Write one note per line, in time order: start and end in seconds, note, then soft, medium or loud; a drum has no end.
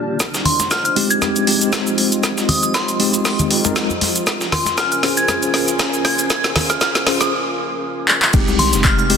0.00 0.16 A#3 medium
0.00 0.20 D4 medium
0.00 0.16 F4 medium
0.00 0.16 G4 medium
0.00 1.65 G4 medium
0.00 0.16 D5 medium
0.00 0.20 A5 medium
0.20 0.30 F1 loud
0.20 8.30 F4 medium
0.20 5.75 F4 medium
0.20 4.23 C5 medium
0.20 4.23 D#5 medium
0.20 kick loud
0.20 snare soft
0.20 closed hi-hat medium
0.20 shaker medium
0.34 0.61 C2 medium
0.34 snare medium
0.34 shaker soft
0.45 0.66 C6 medium
0.45 closed hi-hat medium
0.45 open hi-hat loud
0.45 low conga medium
0.60 1.17 F1 loud
0.60 kick medium
0.60 snare soft
0.60 closed hi-hat medium
0.60 high conga medium
0.60 shaker medium
0.71 0.80 F6 medium
0.71 kick loud
0.71 snare soft
0.71 snare loud
0.71 closed hi-hat medium
0.71 shaker medium
0.85 0.92 F6 medium
0.85 closed hi-hat soft
0.85 shaker soft
0.96 1.19 G#3 medium
0.96 1.19 C4 medium
0.96 1.19 D#4 medium
0.96 1.19 G4 medium
0.96 closed hi-hat medium
0.96 open hi-hat loud
1.10 1.47 G#6 medium
1.10 closed hi-hat medium
1.10 shaker medium
1.22 1.63 F1 medium
1.22 1.45 G#3 medium
1.22 1.45 C4 medium
1.22 1.45 D#4 medium
1.22 1.45 G4 medium
1.22 kick loud
1.22 snare medium
1.22 closed hi-hat medium
1.22 high conga medium
1.22 shaker medium
1.36 closed hi-hat soft
1.36 shaker soft
1.47 2.97 G#3 medium
1.47 2.97 C4 medium
1.47 2.97 D#4 medium
1.47 2.97 G4 medium
1.47 closed hi-hat medium
1.47 open hi-hat loud
1.61 1.69 A#1 medium
1.61 closed hi-hat medium
1.61 shaker medium
1.73 kick loud
1.73 snare medium
1.73 snare loud
1.73 closed hi-hat medium
1.73 shaker medium
1.87 shaker soft
1.98 closed hi-hat medium
1.98 open hi-hat loud
2.12 closed hi-hat medium
2.12 shaker medium
2.23 2.34 F1 medium
2.23 kick loud
2.23 snare medium
2.23 closed hi-hat medium
2.23 shaker medium
2.38 2.64 C2 medium
2.38 snare soft
2.38 shaker soft
2.49 2.58 D#6 medium
2.49 closed hi-hat medium
2.49 open hi-hat loud
2.49 low conga medium
2.63 3.20 F1 loud
2.63 2.70 D#6 medium
2.63 closed hi-hat medium
2.63 shaker medium
2.74 3.25 C6 medium
2.74 kick loud
2.74 snare loud
2.74 snare medium
2.74 closed hi-hat medium
2.74 shaker medium
2.88 closed hi-hat soft
2.88 shaker soft
3.00 3.61 G#3 medium
3.00 3.61 C4 medium
3.00 3.61 D#4 medium
3.00 3.62 G4 medium
3.00 closed hi-hat medium
3.00 open hi-hat loud
3.14 closed hi-hat medium
3.14 shaker medium
3.25 kick loud
3.25 snare medium
3.25 closed hi-hat medium
3.25 open hi-hat medium
3.25 shaker medium
3.39 closed hi-hat soft
3.39 low conga medium
3.39 shaker soft
3.51 4.09 F2 medium
3.51 closed hi-hat medium
3.51 open hi-hat loud
3.65 3.89 G#3 loud
3.65 3.89 C4 medium
3.65 3.89 D#4 medium
3.65 3.89 A#4 loud
3.65 kick medium
3.65 closed hi-hat medium
3.65 high conga loud
3.65 shaker medium
3.76 kick loud
3.76 snare medium
3.76 snare loud
3.76 closed hi-hat medium
3.76 shaker medium
3.90 high conga medium
3.90 shaker soft
4.01 snare soft
4.01 closed hi-hat medium
4.01 open hi-hat loud
4.01 high conga medium
4.16 closed hi-hat medium
4.16 shaker medium
4.27 4.37 A#1 loud
4.27 8.30 C#4 medium
4.27 8.30 A#4 medium
4.27 7.32 A#4 medium
4.27 8.30 G#5 medium
4.27 kick loud
4.27 snare medium
4.27 closed hi-hat medium
4.27 shaker medium
4.41 4.68 F1 medium
4.41 snare medium
4.41 shaker soft
4.52 4.73 C6 medium
4.52 snare medium
4.52 closed hi-hat medium
4.52 open hi-hat loud
4.52 low conga medium
4.65 5.23 A#1 loud
4.65 kick medium
4.65 snare soft
4.65 closed hi-hat medium
4.65 high conga medium
4.65 shaker medium
4.70 7.32 F5 medium
4.78 4.87 F6 medium
4.78 kick loud
4.78 snare medium
4.78 snare loud
4.78 closed hi-hat medium
4.78 shaker medium
4.86 7.32 C6 medium
4.92 4.99 F6 medium
4.92 closed hi-hat soft
4.92 shaker soft
5.03 5.26 C#4 medium
5.03 5.26 F4 medium
5.03 5.26 G#4 medium
5.03 5.26 C5 medium
5.03 snare medium
5.03 closed hi-hat medium
5.03 open hi-hat loud
5.17 5.37 G#6 medium
5.17 closed hi-hat medium
5.17 shaker medium
5.28 5.70 A#1 loud
5.28 5.51 C#4 medium
5.28 5.51 F4 medium
5.28 5.51 G#4 medium
5.28 5.51 C5 medium
5.28 kick loud
5.28 snare medium
5.28 closed hi-hat medium
5.28 high conga medium
5.28 shaker medium
5.42 closed hi-hat soft
5.42 shaker soft
5.54 7.04 C#4 medium
5.54 7.04 F4 medium
5.54 7.04 G#4 medium
5.54 7.04 C5 medium
5.54 snare medium
5.54 open hi-hat loud
5.68 5.76 D#2 medium
5.68 closed hi-hat medium
5.68 shaker medium
5.79 kick loud
5.79 snare medium
5.79 snare loud
5.79 closed hi-hat medium
5.79 shaker medium
5.94 shaker soft
6.05 6.26 G#6 medium
6.05 snare medium
6.05 closed hi-hat medium
6.05 open hi-hat loud
6.19 closed hi-hat medium
6.19 shaker medium
6.30 6.40 A#1 loud
6.30 kick loud
6.30 snare loud
6.30 closed hi-hat medium
6.30 shaker medium
6.44 6.71 F1 medium
6.44 snare medium
6.44 shaker soft
6.56 snare loud
6.56 closed hi-hat medium
6.56 open hi-hat loud
6.56 low conga medium
6.70 7.27 A#1 loud
6.70 6.77 F6 medium
6.70 snare medium
6.70 shaker medium
6.81 6.90 F6 medium
6.81 kick loud
6.81 snare loud
6.81 closed hi-hat medium
6.81 shaker medium
6.95 snare medium
6.95 closed hi-hat soft
6.95 shaker soft
7.06 7.32 C#4 medium
7.06 7.32 F4 medium
7.06 7.32 G#4 medium
7.06 7.32 C5 medium
7.06 snare loud
7.06 closed hi-hat medium
7.06 open hi-hat loud
7.21 7.32 D#6 medium
7.21 snare medium
7.21 closed hi-hat medium
7.21 shaker medium
8.08 clap medium
8.22 clap loud
8.34 8.44 F1 loud
8.34 9.05 G#3 loud
8.34 9.05 C4 medium
8.34 9.06 D#4 loud
8.34 9.06 G4 loud
8.34 kick loud
8.34 closed hi-hat medium
8.34 crash loud
8.34 shaker medium
8.48 8.75 C2 medium
8.48 snare medium
8.48 shaker soft
8.59 8.80 C6 medium
8.59 closed hi-hat medium
8.59 open hi-hat loud
8.59 low conga medium
8.73 9.17 F1 loud
8.73 snare medium
8.73 closed hi-hat medium
8.73 high conga medium
8.73 shaker medium
8.84 8.94 F6 medium
8.84 kick loud
8.84 snare loud
8.84 clap loud
8.84 closed hi-hat medium
8.84 shaker medium
8.99 9.06 F6 medium
8.99 closed hi-hat soft
8.99 shaker soft
9.10 9.17 G#3 medium
9.10 9.17 C4 medium
9.10 9.17 D#4 medium
9.10 9.17 G4 medium
9.10 closed hi-hat medium
9.10 open hi-hat loud